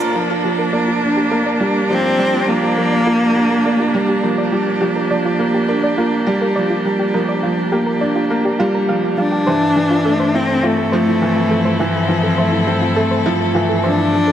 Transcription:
Already playing: F3 A#3 D4 F4 A4 A#4
0.00 shaker
0.15 F3 F4
0.44 F3 G4
0.59 A#4
0.73 A#3 D5
0.83 G4
0.88 F4
1.02 D4
1.17 G4
1.31 A#3 A#4
1.46 D5
1.60 G3 F4
1.90 F3 C4 G4
2.04 A#4
2.18 G3 D5
2.34 F4
2.48 F3 A#3
2.63 G4
2.77 F3 A#4
2.92 D5
3.06 A#3 F4
3.36 D4 G4
3.50 A#4
3.65 A#3 D5
3.80 F4
3.94 G3
4.09 G4
4.23 F3 A#4
4.38 D5
4.52 G3 F4
4.81 F3 G4
4.96 A#4
5.10 F3 D5
5.25 F4
5.39 A#3
5.54 G4
5.68 D4 A#4
5.83 D5
5.98 A#3 F4
6.27 G3 G4
6.41 A#4
6.56 F3 D5
6.70 F4
6.85 G3
6.99 G4
7.14 F3 A#4
7.29 D5
7.43 F3 F4
7.72 A#3 G4
7.86 A#4
8.01 D4 D5
8.15 F4
8.30 A#3
8.45 G4
8.59 G3 F4
8.74 A#4
8.89 F3 F5
9.18 G3 D4 F4
9.32 G4
9.47 G2 E3 C5
9.61 E4
9.76 E3
9.83 C4 E4
9.90 F4
10.05 A3 A4
10.20 C5
10.30 A4
10.34 C4 E4
10.63 A3 F4
10.78 A4
10.92 F3 C5
11.07 E4
11.22 E3
11.36 F4
11.51 F3 A4
11.65 C5
11.79 E3 F3 E4
12.09 E3 F4
12.23 A4
12.38 A3 C5
12.52 E4
12.67 C4
12.82 F4
12.96 A3 A4
13.11 C5
13.26 F3 E4
13.55 E3 F4
13.69 A4
13.83 F3 D4 C5
13.98 E4
14.13 F3
14.21 D4
14.27 A#3 A4

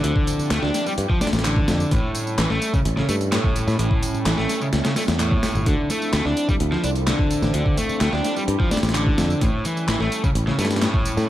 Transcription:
Already playing: F3 C4 D4 E4
0.04 D2 D3 G4, closed hi-hat, tambourine
0.16 kick
0.27 closed hi-hat, tambourine
0.39 muted fingered electric bass stroke, tambourine
0.51 D2 A3, snare, clap, closed hi-hat, tambourine
0.63 D2 D4, snare
0.74 snare, closed hi-hat, tambourine
0.86 G3, tambourine
0.98 G2, closed hi-hat, tambourine
1.10 F3, kick
1.21 D4, snare, closed hi-hat, tambourine
1.27 snare, closed hi-hat
1.33 A1, snare, closed hi-hat, tambourine
1.39 snare, closed hi-hat
1.45 D3, clap, closed hi-hat, tambourine
1.56 kick
1.68 F2, snare, closed hi-hat, tambourine
1.80 tambourine
1.91 A1 A2 G3 A3 C#4 E4 A4, kick, closed hi-hat, tambourine
2.15 closed hi-hat, tambourine
2.27 tambourine
2.38 A1 E3, snare, clap, closed hi-hat, tambourine
2.50 A1 A3, snare
2.62 closed hi-hat, tambourine
2.74 C#3, kick, tambourine
2.85 A1, closed hi-hat, tambourine
2.97 C#3, snare
3.09 G2 A3, closed hi-hat, tambourine
3.21 closed hi-hat, tambourine
3.32 A2, snare, clap, closed hi-hat, tambourine
3.44 kick
3.56 closed hi-hat, tambourine
3.68 A2, snare, tambourine
3.79 A1 A2, closed hi-hat, tambourine
3.91 kick
4.03 closed hi-hat, tambourine
4.14 muted fingered electric bass stroke, tambourine
4.26 A1 E3, snare, clap, closed hi-hat, tambourine
4.38 A1 A3, snare
4.49 snare, closed hi-hat, tambourine
4.61 C#3, tambourine
4.73 C#2, snare, closed hi-hat, tambourine
4.85 C#3, snare, closed hi-hat
4.96 A3, snare, closed hi-hat, tambourine
5.08 E2, snare, closed hi-hat, tambourine
5.20 A2, clap, closed hi-hat, tambourine
5.31 kick
5.43 snare, closed hi-hat, tambourine
5.55 G1, tambourine
5.66 D2 D3 F3 C4 D4, kick, closed hi-hat, tambourine
5.90 A3, closed hi-hat, tambourine
6.02 tambourine
6.13 D2 A3, snare, clap, closed hi-hat, tambourine
6.25 D2 D4, snare
6.37 closed hi-hat, tambourine
6.49 G3, kick, tambourine
6.60 D2, closed hi-hat, tambourine
6.72 F3, snare
6.84 C2 D4, closed hi-hat, tambourine
6.95 closed hi-hat, tambourine
7.07 D3, snare, clap, closed hi-hat, tambourine
7.19 kick
7.31 closed hi-hat, tambourine
7.42 A1, snare, tambourine
7.54 D2 D3 G4, closed hi-hat, tambourine
7.66 kick
7.78 A3, closed hi-hat, tambourine
7.89 muted fingered electric bass stroke, tambourine
8.01 D2 A3, snare, clap, closed hi-hat, tambourine
8.13 D2 D4, snare
8.24 snare, closed hi-hat, tambourine
8.36 G3, tambourine
8.48 G2, closed hi-hat, tambourine
8.60 F3, kick
8.71 D4, snare, closed hi-hat, tambourine
8.77 snare, closed hi-hat
8.83 A1, snare, closed hi-hat, tambourine
8.89 snare, closed hi-hat
8.95 D3, clap, closed hi-hat, tambourine
9.07 kick
9.18 F2, snare, closed hi-hat, tambourine
9.30 tambourine
9.41 A1 A2 G3 A3 C#4 A4, kick, closed hi-hat, tambourine
9.65 E3, closed hi-hat, tambourine
9.77 tambourine
9.88 A1 E3, snare, clap, closed hi-hat, tambourine
10.00 A1 A3, snare
10.12 closed hi-hat, tambourine
10.24 C#3, kick, tambourine
10.35 A1, closed hi-hat, tambourine
10.47 C#3, snare
10.59 G2 A3, snare, closed hi-hat, tambourine
10.65 snare, closed hi-hat
10.71 snare, closed hi-hat, tambourine
10.76 snare, closed hi-hat
10.82 A2, snare, clap, closed hi-hat, tambourine
10.94 kick
11.05 closed hi-hat, tambourine
11.17 A2, snare, tambourine

